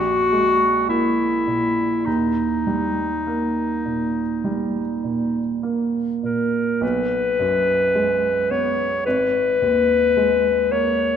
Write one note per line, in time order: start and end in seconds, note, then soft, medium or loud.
0.00 2.03 A#1 soft
0.00 0.89 F#4 medium
0.32 1.23 G#3 soft
0.89 1.83 A#3 soft
0.89 2.07 E4 medium
1.47 2.07 A#2 soft
2.05 4.41 D#2 soft
2.05 5.63 D#4 medium
2.67 3.62 G3 soft
3.27 4.21 A#3 soft
3.85 4.80 A#2 soft
4.44 5.40 G3 soft
5.04 6.00 A#2 soft
5.63 6.59 A#3 soft
6.23 6.82 A#2 soft
6.23 6.84 A#4 soft
6.81 9.00 B1 soft
6.81 8.52 B4 medium
7.39 8.28 F#2 soft
7.95 8.83 G#3 soft
8.50 9.05 B3 soft
8.50 9.05 C#5 medium
9.06 11.17 G#1 soft
9.06 10.73 B4 medium
9.62 10.49 D#2 soft
10.17 11.04 G#3 soft
10.72 11.17 A#3 soft
10.72 11.17 C#5 medium